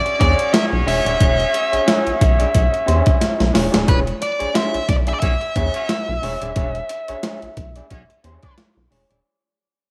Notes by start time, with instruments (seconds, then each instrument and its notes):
Already playing: horn section C#4 F#4 G#4 C#5, lead electric guitar D5
0.05 muted clean electric guitar stroke, closed hi-hat
0.19 analog synth bass E2, clean electric guitar D4 G#4 C#5, lead electric guitar D5, kick, closed hi-hat
0.38 muted clean electric guitar stroke, closed hi-hat
0.52 lead electric guitar E5, muted clean electric guitar stroke, snare, closed hi-hat
0.71 analog synth bass B1, muted clean electric guitar stroke
0.86 analog synth bass E1, clean electric guitar D4 G#4 C#5, lead electric guitar E5, open hi-hat
1.06 analog synth bass D#1, clean electric guitar D4 G#4 D5, closed hi-hat
1.20 analog synth bass E1, clean electric guitar D4 G#4 C#5, kick, closed hi-hat
1.39 muted clean electric guitar stroke, closed hi-hat
1.54 muted clean electric guitar stroke, closed hi-hat
1.72 analog synth bass B1, clean electric guitar D4 G#4 C#5, closed hi-hat
1.86 clean electric guitar D4 G#4 C#5, snare, closed hi-hat
2.07 analog synth bass B1, closed hi-hat
2.20 analog synth bass B1, muted clean electric guitar stroke, kick, closed hi-hat
2.39 clean electric guitar D4 G#4 D5, closed hi-hat
2.54 analog synth bass B1, muted clean electric guitar stroke, kick, closed hi-hat
2.72 muted clean electric guitar stroke, closed hi-hat
2.86 analog synth bass E2, clean electric guitar D4 G#4 C#5, closed hi-hat
3.05 muted clean electric guitar stroke, kick, closed hi-hat
3.20 muted clean electric guitar stroke, snare, closed hi-hat
3.39 analog synth bass B1, muted clean electric guitar stroke, snare, closed hi-hat
3.53 analog synth bass E1, clean electric guitar D4 G#4 C#5, snare, open hi-hat
3.72 analog synth bass D#1, clean electric guitar D4 G#4 D5, snare, closed hi-hat
3.86 analog synth bass E1, clean electric guitar D4 G#4 C#5, lead electric guitar B4, kick, closed hi-hat
4.06 muted clean electric guitar stroke, closed hi-hat
4.20 lead electric guitar D5, muted clean electric guitar stroke, closed hi-hat
4.39 analog synth bass B1, clean electric guitar D4 G#4 C#5, closed hi-hat
4.54 clean electric guitar D4 G#4 C#5, lead electric guitar E5, snare, closed hi-hat
4.74 analog synth bass B1, closed hi-hat
4.88 analog synth bass B1, lead electric guitar D5, muted clean electric guitar stroke, kick, snare, closed hi-hat
5.07 clean electric guitar D4 G#4 D5, lead electric guitar E5, closed hi-hat
5.14 lead electric guitar D5
5.20 analog synth bass B1, horn section C#4 F#4 G#4 C#5, lead electric guitar E5, muted clean electric guitar stroke, kick, closed hi-hat
5.41 muted clean electric guitar stroke, closed hi-hat
5.56 analog synth bass E2, clean electric guitar D4 G#4 C#5, kick, closed hi-hat
5.74 horn section C#4 F#4 G#4 C#5, muted clean electric guitar stroke, closed hi-hat
5.89 muted clean electric guitar stroke, snare, closed hi-hat
6.08 analog synth bass B1, muted clean electric guitar stroke
6.22 analog synth bass E1, clean electric guitar D4 G#4 C#5, open hi-hat
6.41 analog synth bass D#1, clean electric guitar D4 G#4 D5, closed hi-hat
6.55 analog synth bass E1, clean electric guitar D4 G#4 C#5, kick, closed hi-hat
6.75 muted clean electric guitar stroke, closed hi-hat
6.89 muted clean electric guitar stroke, closed hi-hat
7.08 analog synth bass B1, clean electric guitar D4 G#4 C#5, closed hi-hat
7.23 clean electric guitar D4 G#4 C#5, snare, closed hi-hat
7.42 analog synth bass B1, closed hi-hat
7.57 analog synth bass B1, muted clean electric guitar stroke, kick, closed hi-hat
7.76 clean electric guitar D4 G#4 D5, closed hi-hat
7.90 analog synth bass B1, horn section C#4 F#4 G#4 C#5, muted clean electric guitar stroke, kick, closed hi-hat
8.09 muted clean electric guitar stroke, closed hi-hat
8.24 analog synth bass E2, clean electric guitar D4 G#4 C#5, closed hi-hat
8.42 horn section D4 G#4 B4 D5, muted clean electric guitar stroke, kick, closed hi-hat
8.57 muted clean electric guitar stroke, snare, closed hi-hat
8.76 analog synth bass B1, muted clean electric guitar stroke
8.91 analog synth bass E1, clean electric guitar D4 G#4 C#5, open hi-hat
9.10 analog synth bass D#1, clean electric guitar D4 G#4 D5, closed hi-hat